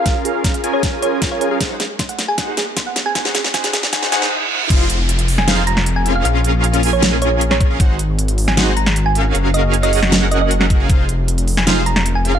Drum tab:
CC |----------------|----------------|----------------|x---------------|
HH |x-x-xxx-x-x-x-x-|x-x-xxx-x-x-x-x-|x-x-xxx-x-x-----|x-x-xxo-x-x-x-x-|
SD |o---o---o---o---|o-o-o-o-o-o-o-o-|oooooooooooo----|-------oo--o----|
BD |o---o---o---o---|o---o---o---o---|o---o---o-------|o---------------|

CC |----------------|----------------|----------------|----------------|
HH |x-x-xxo-x-x-x-x-|x-x-xxo-x-x-x-x-|x-x-xxo-x-x-x-x-|x-x-xxo-x-x-x-x-|
SD |--------o----o--|-------oo--o----|-------oo----o--|-------oo--o----|
BD |--------------o-|o---------------|--------------o-|o---------------|